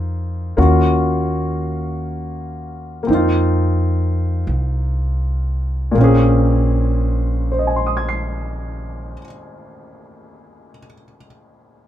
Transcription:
Already playing: F2 A#3 C4 D#4 F4
0.57 D#2 A#3 C#4 F4 F#4
3.03 A#3
3.07 F2 C4 D#4
3.14 F4
4.47 C2
5.92 A#1 A#2 A#3
5.98 C4 C#4
6.04 G#4
7.52 C5
7.59 D#5
7.67 G#5
7.76 C6
7.86 D#6
7.97 G#6
8.09 C7

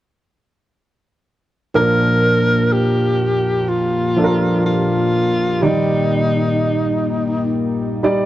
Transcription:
1.74 A#2 F3 A#3 D4 F4 A#4
2.72 G4
3.68 F4 G4
4.16 F3 D4 A4
4.24 A#4
4.66 F4
5.61 D#3 G3 A#3 D#4 D5
8.03 G3 D#4 D5

